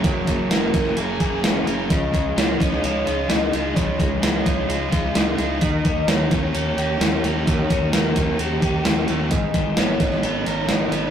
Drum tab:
HH |x-x-x-x-x-x-x-x-|x-x-x-x-x-x-x-x-|x-x-x-x-x-x-x-x-|x-x-x-x-x-x-x-x-|
SD |----o--o----o---|----o--o----o---|----o-------o---|----o-------o---|
BD |o-o---o---o-----|o-o---o---------|o-o---o---o-----|o-o---o---------|

HH |x-x-x-x-x-x-x-x-|x-x-x-x-x-x-x-x-|
SD |----o-------o---|----o--o----o---|
BD |o-o---o---o-----|o-o---o---------|